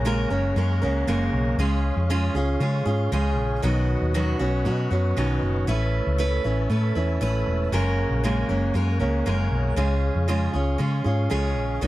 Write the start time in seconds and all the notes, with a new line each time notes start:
Already playing: A#1 G#4 C#5 F#5 A#5
0.05 F#2 C#3 G#3 A#3 C#4 A#4
0.30 F#1 G#3 A#3 C#4 A#4
0.56 F#2 G#3 A#3 C#4 A#4
0.82 C#2 G#3 A#3 C#4 A#4
1.07 F#1 F#2 C#3 G#3 A#3 C#4 A#4
1.33 B1
1.58 C#2 C#3 G#3 C#4 F4 G#4 C#5 F5
1.96 F2
2.10 C#3 G#3 C#4 F4 G#4
2.34 C#2 C#4 F4 G#4
2.60 C#3 G#3 C#4 F4 G#4
2.85 G#2 C#4 F4 G#4
3.12 C#2 C#3 G#3 C#4 F4 G#4
3.38 A#1
3.62 B1 B2 D#3 F#3 B3 C#4 F#4 B4 D#5 F#5
4.02 D#2
4.14 B2 D#3 F#3 B3 C#4 F#4
4.39 B1 F#3 B3 C#4 F#4
4.65 B2 F#3 B3 C#4 F#4
4.91 F#2 F#3 B3 C#4 F#4
5.17 B1 B2 D#3 F#3 B3 C#4 F#4
5.42 F#1
5.67 A1 A3 C#4 E4 B4 E5 A5
6.07 C#2
6.18 A3 C#4 E4 B4
6.44 A1 C#4 E4 B4
6.70 A2 A3 C#4 E4 B4
6.95 E2 C#4 E4 B4
7.21 A1 A3 C#4 E4 B4
7.47 E1
7.72 F#1 F#2 C#3 G#3 A#3 C#4 A#4 F#5 G#5
8.10 A#1
8.24 F#2 C#3 G#3 A#3 C#4 A#4
8.49 F#1 G#3 A#3 C#4 A#4
8.74 F#2 G#3 A#3 C#4 A#4
9.00 C#2 G#3 A#3 C#4 A#4
9.26 F#1 F#2 C#3 G#3 A#3 C#4 A#4
9.51 B1
9.76 C#2 C#3 G#3 C#4 F4 G#4 C#5 F5
10.15 F2
10.28 C#3 G#3 C#4 F4 G#4
10.53 C#2 C#4 F4 G#4
10.78 C#3 G#3 C#4 F4 G#4
11.04 G#2 C#4 F4 G#4
11.30 C#2 C#3 G#3 C#4 F4 G#4
11.57 A#1
11.81 B1 B2 D#3 F#3 B3 C#4 F#4 B4 D#5 F#5